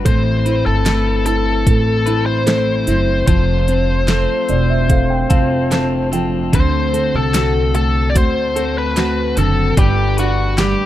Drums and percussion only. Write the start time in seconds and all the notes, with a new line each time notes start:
0.06 kick, closed hi-hat
0.46 closed hi-hat
0.86 snare, closed hi-hat
1.26 closed hi-hat
1.67 kick, closed hi-hat
2.07 closed hi-hat
2.47 snare, closed hi-hat
2.87 closed hi-hat
3.27 kick, closed hi-hat
3.68 closed hi-hat
4.08 snare, closed hi-hat
4.49 closed hi-hat
4.89 kick, closed hi-hat
5.30 kick, closed hi-hat
5.71 snare, closed hi-hat
6.13 closed hi-hat
6.53 kick, closed hi-hat
6.94 closed hi-hat
7.34 snare, closed hi-hat
7.75 closed hi-hat
8.16 kick, closed hi-hat
8.56 closed hi-hat
8.96 snare, closed hi-hat
9.37 closed hi-hat
9.77 kick, closed hi-hat
10.18 closed hi-hat
10.58 snare, closed hi-hat